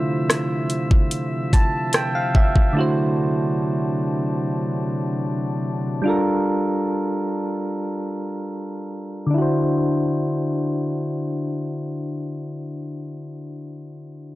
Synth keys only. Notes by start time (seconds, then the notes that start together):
Already playing: D3 A3 E4 F4 C5
1.53 A5
1.95 G5
2.15 F5
2.35 E5
2.73 D3 A3 E4
2.79 F#4 C5
6.02 G3 D4 F4
6.07 A4 A#4
9.27 D3 D4
9.34 E4 F#4
9.42 C5